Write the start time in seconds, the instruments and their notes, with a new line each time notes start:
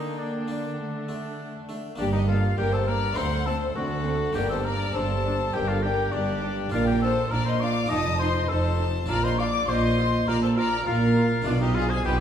Already playing: harpsichord D3 A#3 D4, cello section D3, viola section A#3, violin section D4 G5, oboe D#4
0.18 oboe D4
0.48 harpsichord A#3 D4
0.78 viola section A3, violin section F#5
1.09 harpsichord A3 D4
1.69 harpsichord A3 D4
1.96 double bass section G1, cello section G2, harpsichord G2 A#3 D4, viola section A#3, oboe D4, violin section G4 D5
2.12 oboe D#4, violin section G4 D#5
2.28 viola section A#3, oboe F4, violin section A4 F5
2.57 double bass section G1, cello section G2, harpsichord G2, viola section A#3, oboe G4, violin section A#4 G5
2.72 oboe A4, violin section C5 A5
2.87 viola section A#3, oboe A#4, violin section D5 A#5
3.13 harpsichord A3 C4 D4, viola section C4
3.17 double bass section D2, cello section D2, harpsichord D2, oboe C5, violin section F#5 C6
3.46 viola section C4, oboe A4, violin section C5 A5
3.76 double bass section D2, cello section D2, harpsichord D2, viola section C4, oboe F#4, violin section A4 F#5
4.05 viola section C4
4.33 double bass section G1, cello section G2, harpsichord G2 A#3 D4, viola section D4, oboe G4, violin section A#4 G5
4.49 oboe A4, violin section C5 A5
4.64 viola section D4, oboe A#4, violin section D5 A#5
4.94 double bass section G1, harpsichord G2, cello section G2, viola section D4, oboe A4, violin section C5 A5
5.25 viola section D4
5.53 double bass section G1, harpsichord G2, cello section G2, viola section D4, oboe G4, violin section A#4 G5
5.68 oboe F4, violin section A4 F5
5.83 viola section D4, oboe G4, violin section A#4 G5
6.12 double bass section G1, harpsichord G2, cello section G2, oboe D4, viola section D4, violin section G4 D5
6.42 viola section D4
6.70 double bass section A#1, harpsichord A#2 A#3 D4, cello section A#2, viola section D4, oboe F4, violin section A#4 F5
6.87 oboe G4, violin section A#4 G5
7.01 viola section D4, oboe A4, violin section C5 A5
7.31 double bass section A#1, harpsichord A#2, cello section A#2, viola section D4, oboe A#4, violin section D5 A#5
7.45 oboe C5, violin section D#5 C6
7.60 viola section D4, oboe D5, violin section F5 D6
7.86 harpsichord D#4 F4, oboe D#5
7.90 double bass section F1, cello section F2, harpsichord F2, viola section D#4, violin section A5 D#6
8.19 viola section D#4, oboe C5, violin section D#5 C6
8.49 double bass section F1, cello section F2, harpsichord F2, viola section D#4, oboe A4, violin section C5 A5
8.78 viola section D#4
9.06 double bass section A#1, cello section A#2, harpsichord A#2 D4 F4, viola section F4, oboe A#4, violin section D5 A#5
9.24 oboe C5, violin section D#5 C6
9.38 viola section F4, oboe D5, violin section F5 D6
9.68 double bass section A#1, cello section A#2, harpsichord A#2, viola section F4, oboe C5, violin section D#5 C6
9.97 viola section F4
10.27 double bass section A#1, cello section A#2, harpsichord A#2, viola section F4, oboe A#4, violin section D5 A#5
10.42 oboe A4, violin section C5 A5
10.56 viola section F4, oboe A#4, violin section D5 A#5
10.86 double bass section A#1, cello section A#2, harpsichord A#2, viola section F4, oboe F4, violin section A#4 F5
11.16 viola section F4
11.42 double bass section B1, cello section B2, harpsichord B2 D4 F4, violin section F4 D5
11.46 oboe D4, viola section F4
11.60 oboe D#4, violin section G4 D#5
11.75 oboe F4, viola section F4, violin section G#4 F5
11.89 oboe G#4, violin section C5 G#5
12.04 double bass section B1, cello section B2, harpsichord B2, viola section F4, oboe G4, violin section B4 G5